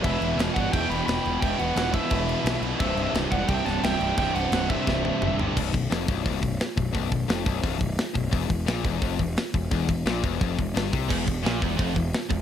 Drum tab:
CC |xxxxxxxx|xxxxxxxx|xxxxxxxx|xxxx----|
HH |--------|--------|--------|--------|
SD |--o---o-|--o---o-|--o--oo-|--o-o---|
T1 |--------|--------|--------|-----o--|
T2 |--------|--------|--------|------o-|
FT |--------|--------|--------|-------o|
BD |o--oo---|o--oo---|o--oo---|o--oo---|

CC |x-------|--------|--------|--------|
HH |-ooooooo|oooooooo|oooooooo|oooooooo|
SD |--o---o-|--o---o-|--o---o-|--o---o-|
T1 |--------|--------|--------|--------|
T2 |--------|--------|--------|--------|
FT |--------|--------|--------|--------|
BD |oo-ooo-o|oo-ooo-o|oo-ooo-o|oo-ooo-o|

CC |x-------|
HH |-ooooooo|
SD |--o---o-|
T1 |--------|
T2 |--------|
FT |--------|
BD |oo-ooo-o|